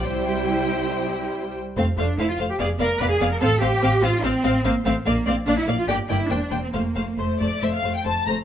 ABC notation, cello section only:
X:1
M:4/4
L:1/16
Q:1/4=143
K:F
V:1 name="Cello section"
E12 z4 | C2 D2 E F2 G _A2 B2 _c A2 B | A2 G4 F2 C4 B,2 A,2 | B,2 C2 D E2 F G2 E2 D3 C |
B,4 A,8- A,2 z2 |]